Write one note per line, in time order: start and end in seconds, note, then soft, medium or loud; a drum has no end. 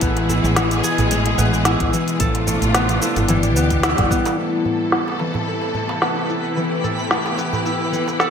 0.00 0.40 A1 medium
0.00 2.18 B2 medium
0.00 2.16 E3 medium
0.00 2.18 G#3 medium
0.00 0.90 A3 medium
0.00 1.38 B3 medium
0.00 0.28 E4 medium
0.00 2.16 E4 medium
0.00 2.18 G#4 medium
0.00 0.90 A4 loud
0.00 kick loud
0.00 closed hi-hat medium
0.00 shaker soft
0.17 closed hi-hat soft
0.17 darbuka tek medium
0.29 1.66 E4 medium
0.29 darbuka dum medium
0.29 shaker medium
0.44 0.80 A1 loud
0.44 shaker soft
0.56 1.92 E3 medium
0.56 snare loud
0.56 closed hi-hat medium
0.56 shaker soft
0.71 closed hi-hat soft
0.71 shaker soft
0.84 2.26 G#4 loud
0.84 darbuka ka medium
0.84 shaker medium
0.98 1.35 A1 medium
0.98 closed hi-hat soft
0.98 darbuka ka medium
0.98 darbuka dum medium
0.98 shaker soft
1.11 2.25 G#3 medium
1.11 closed hi-hat medium
1.11 shaker soft
1.26 closed hi-hat soft
1.26 darbuka ka medium
1.26 darbuka tek soft
1.38 1.76 A1 medium
1.38 2.74 B3 medium
1.38 darbuka dum medium
1.38 shaker medium
1.53 darbuka ka medium
1.53 shaker soft
1.65 3.02 E4 medium
1.65 snare medium
1.65 closed hi-hat medium
1.65 shaker soft
1.80 1.91 A1 loud
1.80 kick loud
1.80 closed hi-hat soft
1.93 2.25 E3 medium
1.93 shaker medium
2.08 closed hi-hat soft
2.08 shaker soft
2.19 2.58 A1 loud
2.19 3.28 C3 medium
2.19 3.28 F3 medium
2.19 3.28 A3 medium
2.19 4.36 D4 medium
2.19 3.28 F4 medium
2.19 4.40 A4 loud
2.19 kick loud
2.19 closed hi-hat medium
2.19 shaker soft
2.35 closed hi-hat soft
2.35 darbuka tek medium
2.47 4.37 A3 medium
2.47 darbuka dum medium
2.47 shaker medium
2.62 2.99 A1 medium
2.62 closed hi-hat soft
2.62 shaker soft
2.74 3.56 B3 medium
2.74 snare loud
2.74 closed hi-hat medium
2.74 shaker soft
2.89 closed hi-hat soft
2.89 shaker soft
3.02 3.83 E4 medium
3.02 darbuka ka medium
3.02 shaker medium
3.16 3.56 G1 medium
3.16 closed hi-hat soft
3.16 darbuka ka medium
3.16 darbuka tek soft
3.16 darbuka dum medium
3.16 shaker soft
3.28 4.37 B2 medium
3.28 4.36 D3 medium
3.28 4.43 E3 medium
3.28 4.36 G3 medium
3.28 4.37 G4 medium
3.28 closed hi-hat medium
3.28 darbuka ka medium
3.28 shaker soft
3.43 closed hi-hat soft
3.43 shaker soft
3.56 3.94 D2 medium
3.56 4.10 B3 medium
3.56 shaker medium
3.70 kick medium
3.70 closed hi-hat soft
3.70 shaker soft
3.83 4.92 E4 loud
3.83 snare loud
3.83 closed hi-hat medium
3.83 shaker soft
3.98 4.09 G1 medium
3.98 4.43 G3 medium
3.98 kick loud
3.98 closed hi-hat soft
3.98 darbuka dum medium
4.10 4.65 B3 loud
4.10 kick loud
4.10 shaker medium
4.25 closed hi-hat soft
4.25 darbuka ka soft
4.25 darbuka tek medium
4.25 shaker soft
4.37 8.30 C3 medium
4.37 8.30 E3 medium
4.37 8.30 A3 medium
4.37 5.74 A3 medium
4.37 8.30 B3 medium
4.37 8.30 E4 medium
4.37 6.54 A4 medium
4.37 8.30 B4 medium
4.37 shaker soft
4.65 6.01 B3 medium
4.65 darbuka dum medium
4.65 shaker medium
4.81 shaker soft
4.92 6.29 E4 medium
4.92 snare medium
4.92 shaker soft
5.08 darbuka tek medium
5.08 shaker soft
5.19 6.55 E3 medium
5.19 darbuka ka medium
5.19 darbuka tek medium
5.19 shaker medium
5.34 darbuka ka medium
5.34 darbuka dum medium
5.34 shaker soft
5.47 6.83 A4 medium
5.47 shaker soft
5.62 darbuka ka medium
5.62 darbuka tek soft
5.74 7.10 A3 medium
5.74 darbuka dum medium
5.74 shaker medium
5.89 darbuka ka medium
5.89 darbuka tek medium
5.89 shaker soft
6.02 7.37 B3 medium
6.02 snare medium
6.02 shaker soft
6.29 7.65 E4 medium
6.29 shaker medium
6.44 shaker soft
6.56 7.91 E3 medium
6.56 8.30 G4 medium
6.56 shaker soft
6.84 8.19 A4 medium
6.84 darbuka dum medium
6.84 shaker medium
6.99 shaker soft
7.11 8.30 A3 medium
7.11 snare medium
7.11 shaker soft
7.26 darbuka tek medium
7.26 shaker soft
7.37 8.30 B3 medium
7.37 darbuka ka medium
7.37 darbuka tek medium
7.37 shaker medium
7.53 darbuka ka medium
7.53 darbuka dum medium
7.53 shaker soft
7.65 8.30 E4 medium
7.65 darbuka ka medium
7.65 darbuka tek medium
7.65 shaker soft
7.81 darbuka tek soft
7.92 8.30 E3 medium
7.92 shaker medium
8.08 darbuka tek medium
8.08 shaker soft
8.19 8.30 A4 medium
8.19 snare medium
8.19 shaker soft